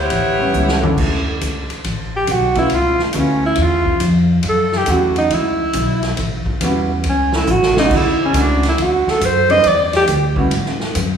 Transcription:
0.00 0.84 B3 medium
0.00 0.84 E4 medium
0.00 0.84 G4 medium
0.00 0.84 C#5 loud
0.10 0.53 A1 medium
0.10 ride medium
0.39 0.80 G3 medium
0.39 0.80 B3 medium
0.39 0.80 C#4 medium
0.39 0.81 E4 medium
0.39 0.81 F#5 medium
0.54 0.96 C#2 medium
0.54 hi-hat pedal medium
0.54 high tom soft
0.68 snare medium
0.82 1.38 A3 medium
0.82 1.38 C#4 medium
0.82 1.38 D4 medium
0.82 1.38 E4 medium
0.82 1.39 A4 medium
0.82 floor tom medium
0.97 1.40 D2 medium
0.97 kick medium
0.97 crash medium
1.41 1.68 C#2 medium
1.41 hi-hat pedal medium
1.41 ride medium
1.69 muted upright bass stroke soft
1.69 ride soft
1.84 2.27 A1 medium
1.84 ride medium
2.16 2.33 G4 medium
2.27 2.70 B1 medium
2.27 hi-hat pedal medium
2.27 ride medium
2.32 2.58 F#4 medium
2.55 2.69 A3 medium
2.55 2.70 B3 medium
2.55 2.70 C#4 medium
2.55 2.70 E4 medium
2.55 2.77 E4 medium
2.55 2.71 F4 medium
2.55 kick medium
2.55 ride soft
2.70 2.98 C#2 medium
2.70 ride medium
2.75 3.02 F4 medium
2.99 muted upright bass stroke soft
2.99 snare soft
3.04 3.20 A3 medium
3.13 3.56 D2 medium
3.13 3.81 A3 medium
3.13 3.81 B3 medium
3.13 3.81 C#4 medium
3.13 3.82 E4 soft
3.13 3.82 F4 medium
3.13 hi-hat pedal medium
3.13 ride medium
3.19 3.45 C#4 medium
3.46 3.64 E4 medium
3.55 4.00 E2 medium
3.55 ride medium
3.63 4.04 F4 medium
3.85 kick medium
4.00 4.43 F2 medium
4.00 hi-hat pedal soft
4.00 ride medium
4.43 4.86 F#2 medium
4.43 ride medium
4.49 4.78 A4 medium
4.72 snare soft
4.77 4.92 G4 medium
4.86 5.30 E2 medium
4.86 5.54 F#3 soft
4.86 5.54 A3 medium
4.86 5.54 C#4 medium
4.86 5.55 E4 soft
4.86 5.55 F#4 medium
4.86 hi-hat pedal medium
4.86 ride medium
4.91 5.17 F#4 medium
5.16 5.35 D#4 medium
5.16 ride soft
5.30 5.73 C#2 medium
5.30 6.19 E4 medium
5.30 ride medium
5.73 6.16 B1 medium
5.73 hi-hat pedal medium
5.73 ride medium
6.03 snare soft
6.03 ride soft
6.17 6.45 A1 medium
6.17 ride medium
6.46 muted upright bass stroke soft
6.46 kick medium
6.61 7.03 E2 medium
6.61 6.88 G3 medium
6.61 6.88 B3 medium
6.61 6.88 C#4 medium
6.61 6.88 E4 medium
6.61 6.88 F#4 medium
6.61 hi-hat pedal medium
6.61 ride medium
7.04 7.47 C#2 medium
7.04 ride medium
7.09 7.37 C#4 medium
7.32 7.53 E4 medium
7.32 snare medium
7.47 7.90 A1 medium
7.47 hi-hat pedal medium
7.51 7.78 F#4 loud
7.62 snare medium
7.77 7.90 A3 medium
7.77 7.90 C#4 medium
7.77 7.90 D4 medium
7.77 7.97 D#4 medium
7.77 7.91 E4 medium
7.77 7.91 F#4 medium
7.77 snare medium
7.90 8.33 D2 medium
7.90 kick medium
7.90 crash medium
7.96 8.22 E4 medium
8.25 8.42 C#4 medium
8.33 8.76 C#2 medium
8.33 8.60 A3 medium
8.33 8.61 C#4 soft
8.33 8.61 D4 medium
8.33 8.61 E4 medium
8.33 8.61 F#4 medium
8.33 hi-hat pedal medium
8.33 ride medium
8.40 8.66 D4 medium
8.63 snare soft
8.63 ride soft
8.69 8.84 E4 medium
8.78 9.04 D#2 medium
8.78 ride medium
8.82 9.11 F#4 medium
9.07 9.27 A4 medium
9.07 muted upright bass stroke soft
9.07 snare soft
9.21 9.63 F#2 medium
9.21 hi-hat pedal medium
9.21 ride medium
9.25 9.52 C5 loud
9.49 9.62 G3 medium
9.49 9.62 B3 medium
9.49 9.63 D4 medium
9.49 9.63 E4 medium
9.49 9.63 G4 medium
9.49 9.69 D#5 loud
9.49 ride soft
9.64 10.06 E2 medium
9.64 ride medium
9.68 9.95 D5 loud
9.93 10.04 G4 loud
9.93 snare soft
9.93 ride soft
10.07 10.50 D2 loud
10.07 hi-hat pedal medium
10.07 ride medium
10.36 10.49 G3 medium
10.36 10.49 B3 medium
10.36 10.50 C#4 medium
10.36 10.50 E4 medium
10.36 10.50 F#4 medium
10.36 kick medium
10.50 10.93 A2 medium
10.50 ride medium
10.65 snare soft
10.80 snare soft
10.95 11.17 F#2 medium
10.95 hi-hat pedal medium
10.95 ride medium

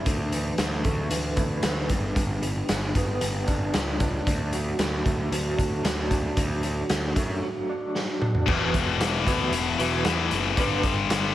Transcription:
0.05 0.51 D2 medium
0.05 0.57 D3 medium
0.05 kick loud
0.05 closed hi-hat medium
0.32 1.10 E3 medium
0.32 closed hi-hat medium
0.58 0.81 D2 medium
0.58 1.90 D3 medium
0.58 snare loud
0.58 closed hi-hat medium
0.84 1.08 D2 medium
0.84 1.90 A3 medium
0.84 kick medium
0.84 closed hi-hat medium
1.10 1.33 D2 medium
1.10 1.62 E3 medium
1.10 closed hi-hat medium
1.37 1.60 D2 medium
1.37 1.90 E4 medium
1.37 kick medium
1.37 closed hi-hat medium
1.63 1.86 D2 medium
1.63 1.90 E3 medium
1.63 snare loud
1.63 closed hi-hat medium
1.89 2.12 G1 medium
1.89 2.14 G2 medium
1.89 kick medium
1.89 closed hi-hat medium
2.15 2.61 G1 medium
2.15 3.47 G2 medium
2.15 kick loud
2.15 closed hi-hat medium
2.42 3.20 G3 medium
2.42 closed hi-hat medium
2.69 2.92 G1 medium
2.69 4.00 D3 medium
2.69 snare loud
2.69 closed hi-hat medium
2.95 3.18 G1 medium
2.95 4.27 B3 medium
2.95 kick medium
2.95 closed hi-hat medium
3.21 3.44 G1 medium
3.21 3.73 G3 medium
3.21 closed hi-hat medium
3.47 3.70 G1 medium
3.47 4.00 D4 medium
3.47 kick medium
3.47 closed hi-hat medium
3.74 4.19 C#2 medium
3.74 4.27 G3 medium
3.74 snare loud
3.74 closed hi-hat medium
4.00 5.57 D4 medium
4.00 kick medium
4.00 closed hi-hat medium
4.27 4.72 D2 medium
4.27 4.78 D3 medium
4.27 kick medium
4.27 closed hi-hat medium
4.53 5.31 F#3 medium
4.53 closed hi-hat medium
4.79 5.01 D2 medium
4.79 6.10 D3 medium
4.79 snare loud
4.79 closed hi-hat medium
5.06 5.28 D2 medium
5.06 6.37 A3 medium
5.06 kick medium
5.06 closed hi-hat medium
5.32 5.54 D2 medium
5.32 5.82 F#3 medium
5.32 closed hi-hat medium
5.58 5.81 D2 medium
5.58 6.10 D4 medium
5.58 kick medium
5.58 closed hi-hat medium
5.83 6.29 D2 medium
5.83 6.62 F#3 medium
5.83 snare loud
5.83 closed hi-hat medium
6.11 7.42 D4 medium
6.11 kick medium
6.11 closed hi-hat medium
6.37 6.82 D2 medium
6.37 6.89 D3 medium
6.37 kick loud
6.37 closed hi-hat medium
6.63 7.41 F#3 medium
6.63 closed hi-hat medium
6.89 7.12 D2 medium
6.89 8.21 D3 medium
6.89 snare loud
6.89 closed hi-hat medium
7.16 7.38 F#2 medium
7.16 8.47 A3 medium
7.16 kick medium
7.16 closed hi-hat medium
7.43 7.94 F#3 medium
7.69 8.20 D4 medium
7.95 8.47 F#3 medium
7.95 snare medium
8.21 8.47 D4 medium
8.21 mid tom medium
8.35 floor tom medium
8.46 8.72 E1 medium
8.46 9.76 E2 medium
8.46 9.77 B2 medium
8.46 8.73 E3 medium
8.46 9.77 E3 medium
8.46 8.74 F#3 medium
8.46 8.73 B3 medium
8.46 8.73 E4 medium
8.46 kick loud
8.46 crash medium
8.74 8.98 E1 medium
8.74 muted clean electric guitar stroke soft
8.74 kick medium
8.74 closed hi-hat medium
9.00 9.24 E1 medium
9.00 muted clean electric guitar stroke soft
9.00 snare loud
9.00 closed hi-hat medium
9.26 9.51 D2 medium
9.26 9.52 E3 medium
9.26 9.52 F#3 medium
9.26 9.52 B3 medium
9.26 9.52 E4 medium
9.26 kick medium
9.26 closed hi-hat medium
9.52 9.76 E1 medium
9.52 muted clean electric guitar stroke soft
9.52 closed hi-hat medium
9.78 10.03 E1 medium
9.78 10.04 E2 medium
9.78 10.04 B2 medium
9.78 10.03 E3 medium
9.78 10.04 E3 medium
9.78 10.05 F#3 medium
9.78 10.05 B3 medium
9.78 10.05 E4 medium
9.78 closed hi-hat medium
10.05 10.56 E2 medium
10.05 10.29 E2 medium
10.05 10.57 B2 medium
10.05 10.57 E3 medium
10.05 muted clean electric guitar stroke soft
10.05 snare loud
10.05 closed hi-hat medium
10.31 10.55 F#1 medium
10.31 muted clean electric guitar stroke medium
10.31 closed hi-hat medium
10.56 10.82 G1 medium
10.56 11.35 G2 medium
10.56 11.35 D3 medium
10.56 11.35 G3 medium
10.56 10.83 A3 medium
10.56 10.83 D4 medium
10.56 10.83 G4 medium
10.56 10.82 B4 medium
10.56 kick loud
10.56 closed hi-hat medium
10.83 11.08 G1 medium
10.83 muted clean electric guitar stroke soft
10.83 kick medium
10.83 closed hi-hat medium
11.09 11.34 G1 medium
11.09 muted clean electric guitar stroke soft
11.09 snare loud
11.09 closed hi-hat medium

